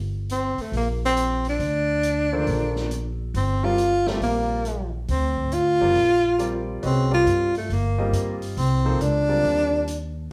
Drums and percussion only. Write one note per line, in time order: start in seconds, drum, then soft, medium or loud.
0.29 closed hi-hat soft
0.58 open hi-hat soft
0.73 open hi-hat soft
1.17 closed hi-hat soft
1.45 open hi-hat soft
1.60 open hi-hat soft
2.03 closed hi-hat soft
2.47 open hi-hat soft
2.76 snare soft
2.91 closed hi-hat soft
3.34 open hi-hat soft
3.78 closed hi-hat soft
4.07 snare soft
4.22 open hi-hat soft
4.65 closed hi-hat soft
5.08 open hi-hat soft
5.37 kick soft
5.52 closed hi-hat soft
5.95 open hi-hat soft
6.39 closed hi-hat soft
6.83 open hi-hat soft
7.27 closed hi-hat soft
7.55 open hi-hat soft
7.70 open hi-hat soft
8.13 closed hi-hat soft
8.42 open hi-hat soft
8.57 open hi-hat soft
9.01 closed hi-hat soft
9.44 open hi-hat soft
9.87 closed hi-hat soft